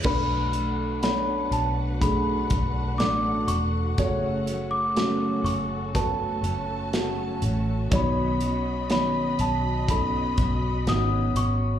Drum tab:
CC |x-------|--------|--------|
HH |-xxxxxxx|xxxxxxxx|xxxxxxxx|
SD |--o---o-|--o---o-|--o---o-|
BD |o---oo--|o---o---|o---oo--|